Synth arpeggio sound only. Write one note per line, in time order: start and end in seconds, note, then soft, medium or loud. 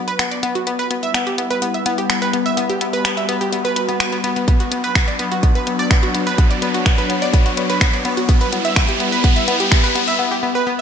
0.08 0.19 B4 loud
0.19 0.24 B3 medium
0.31 0.39 D5 medium
0.43 0.51 B3 loud
0.55 0.66 F#4 medium
0.67 0.75 B3 medium
0.79 0.86 B4 loud
0.91 0.95 B3 medium
1.03 1.14 E5 loud
1.14 1.26 B3 medium
1.27 1.38 G4 medium
1.38 1.46 B3 medium
1.51 1.61 B4 loud
1.62 1.67 B3 medium
1.74 1.82 E5 medium
1.86 1.94 B3 loud
1.98 2.09 G4 medium
2.10 2.18 B3 medium
2.22 2.29 B4 loud
2.33 2.38 B3 medium
2.46 2.57 E5 loud
2.57 2.69 B3 medium
2.70 2.81 G4 medium
2.81 2.89 B3 medium
2.93 3.04 B4 loud
3.05 3.10 B3 medium
3.17 3.25 E5 medium
3.29 3.37 B3 loud
3.41 3.52 G4 medium
3.52 3.60 B3 medium
3.65 3.72 B4 loud
3.76 3.84 B4 medium
3.89 3.96 B3 medium
4.00 4.05 B3 medium
4.12 4.17 B3 medium
4.24 4.32 B3 loud
4.36 4.44 B3 medium
4.48 4.59 B3 medium
4.60 4.71 F#4 medium
4.72 4.79 B3 medium
4.84 4.95 B4 loud
4.95 5.00 B3 medium
5.08 5.15 D5 medium
5.19 5.27 B3 loud
5.32 5.42 F#4 medium
5.43 5.51 B3 medium
5.55 5.63 B4 loud
5.67 5.72 B3 medium
5.79 5.90 D5 loud
5.91 6.02 B3 medium
6.03 6.14 F#4 medium
6.14 6.22 B3 medium
6.27 6.38 B4 loud
6.38 6.43 B3 medium
6.51 6.58 D5 medium
6.62 6.70 B3 loud
6.74 6.85 F#4 medium
6.86 6.94 B3 medium
6.98 7.05 B4 loud
7.10 7.14 B3 medium
7.22 7.33 D5 loud
7.34 7.45 B3 medium
7.46 7.57 F#4 medium
7.57 7.65 B3 medium
7.70 7.81 B4 loud
7.81 7.86 B3 medium
7.93 8.01 D5 medium
8.05 8.13 B3 loud
8.17 8.28 F#4 medium
8.29 8.37 B3 medium
8.41 8.48 B4 loud
8.52 8.57 B3 medium
8.65 8.76 E5 loud
8.76 8.88 B3 medium
8.89 9.00 G4 medium
9.00 9.08 B3 medium
9.12 9.23 B4 loud
9.24 9.29 B3 medium
9.36 9.44 E5 medium
9.48 9.56 B3 loud
9.60 9.71 G4 medium
9.72 9.79 B3 medium
9.84 9.91 B4 loud
9.95 10.00 B3 medium
10.08 10.19 E5 loud
10.19 10.31 B3 medium
10.31 10.42 G4 medium
10.43 10.51 B3 medium
10.55 10.66 B4 loud
10.67 10.71 B3 medium